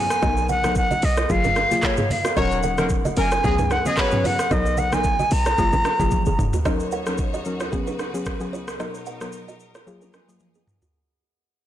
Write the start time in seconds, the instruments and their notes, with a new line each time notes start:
Already playing: flute G#5
0.10 cross-stick, shaker
0.22 808-style bass B1, synth pluck F#3 B3 D#4 A#4, kalimba F#4 D#5, kick, cross-stick, low conga, shaker
0.37 shaker
0.49 kalimba A#4 F#5, flute F#5, high conga, shaker
0.64 synth pluck F#3 B3 D#4 A#4, cross-stick, high conga, shaker
0.75 flute F#5, kick, shaker
0.91 kalimba F#4 D#5, high conga, shaker
1.02 808-style bass B1, flute D#5, open hi-hat, shaker
1.17 kalimba F4 C#5, cross-stick, shaker
1.29 808-style bass F#1, synth pluck F#3 A#3 F4 G#4, flute F5, kick, shaker
1.44 kalimba C#4 A#4, mid tom, high conga, shaker
1.56 kalimba C#4 A#4, cross-stick, shaker
1.71 synth pluck F#3 A#3 F4 G#4, high conga, shaker
1.82 flute C#5, kick, cross-stick, clap, shaker
1.97 kalimba B3 G#4, mid tom, high conga, shaker
2.10 flute F5, open hi-hat, high conga, low conga, shaker
2.25 kalimba A#3 F#4, cross-stick, shaker
2.37 808-style bass D#1, synth pluck F#3 C#4 D#4 A#4, horn section C#4 F#4 A#4 C#5, kalimba F#4 D#5, flute F#5, kick, cross-stick, low conga, shaker
2.51 shaker
2.63 kalimba A#4 F#5, high conga, shaker
2.78 synth pluck F#3 C#4 D#4 A#4, horn section A#3 D#4 F#4 A#4, cross-stick, high conga, shaker
2.89 kick, shaker
3.05 kalimba F#4 D#5, high conga, shaker
3.17 808-style bass F#1, synth pluck F#3 C#4 D#4 A#4, horn section A#3 D#4 F#4 A#4, flute G#5, open hi-hat, shaker
3.32 kalimba F4 C#5, cross-stick, shaker
3.44 808-style bass C#2, synth pluck F#3 B3 C#4 G#4, horn section G#3 B3 C#4 G#4, kick, shaker
3.58 kalimba D#4 B4, mid tom, high conga, shaker
3.71 kalimba D#4 B4, flute F#5, cross-stick, shaker
3.85 synth pluck F#3 B3 C#4 G#4, horn section G#3 B3 C#4 G#4, flute D#5, high conga, shaker
3.96 horn section B3 F#4 G#4 B4, flute C#5, kick, cross-stick, clap, shaker
4.11 synth pluck F#3 B3 C#4 G#4, mid tom, high conga, shaker
4.24 kalimba F4 C#5, flute F#5, open hi-hat, high conga, low conga, shaker
4.39 cross-stick, shaker
4.51 808-style bass B1, synth pluck F#3 B3 D#4 A#4, kalimba F#4 D#5, flute D#5, kick, cross-stick, low conga, shaker
4.66 shaker
4.77 kalimba A#4 F#5, flute F#5, high conga, shaker
4.92 synth pluck F#3 B3 D#4 A#4, flute G#5, cross-stick, high conga, shaker
5.04 kick, shaker
5.19 kalimba F#4 D#5, high conga, shaker
5.31 808-style bass B1, flute A#5, open hi-hat, shaker
5.46 kalimba F4 C#5, cross-stick, shaker
5.58 808-style bass F#1, synth pluck F#3 A#3 F4 G#4, kick, shaker
5.73 808-style bass G#1, kalimba C#4 A#4, high conga, shaker
5.85 kalimba C#4 A#4, cross-stick, shaker
6.00 808-style bass F1, synth pluck F#3 A#3 F4 G#4, kick, high conga, shaker
6.11 kick, high tom, shaker
6.26 808-style bass F#1, kalimba B3 G#4, high conga, shaker
6.39 808-style bass F1, mid tom, high conga, low conga, shaker
6.53 kalimba A#3 F#4, floor tom, shaker
6.65 string section D#2 D#3 F#4 C#5, synth pluck F#3 C#4 D#4 A#4, kalimba F#4 D#5, kick, cross-stick, shaker
6.80 shaker
6.91 kalimba A#4 F#5, shaker
7.06 synth pluck F#3 C#4 D#4 A#4, cross-stick, shaker
7.18 kick, shaker
7.34 kalimba F#4 D#5, shaker
7.45 synth pluck F#3 C#4 D#4 A#4, shaker
7.60 kalimba F4 C#5, cross-stick, shaker
7.72 string section C#2 C#3 B4, synth pluck F#3 B3 C#4 G#4, kick, shaker
7.87 kalimba D#4 B4, shaker
7.99 kalimba D#4 B4, cross-stick, shaker
8.14 synth pluck F#3 B3 C#4 G#4, shaker
8.26 kick, cross-stick, shaker
8.40 synth pluck F#3 B3 C#4 G#4, shaker
8.53 kalimba F4 C#5, shaker
8.68 cross-stick, shaker
8.79 string section B2 F#3 D#4 A#4, synth pluck F#3 B3 D#4 A#4, kalimba F#4 D#5, cross-stick, shaker
8.95 shaker
9.06 kalimba A#4 F#5, shaker
9.21 synth pluck F#3 B3 D#4 A#4, cross-stick, shaker
9.32 shaker
9.48 kalimba F#4 D#5, shaker
9.60 shaker
9.75 kalimba F4 C#5, cross-stick, shaker
9.87 string section F#2 F3 G#4, synth pluck F#3 A#3 F4 G#4, shaker
10.02 kalimba C#4 A#4, shaker
10.14 kalimba C#4 A#4, cross-stick, shaker
10.28 synth pluck F#3 A#3 F4 G#4, shaker
10.40 high tom, shaker
10.54 kalimba B3 G#4, shaker
10.67 mid tom, shaker
10.82 kalimba A#3 F#4, floor tom, shaker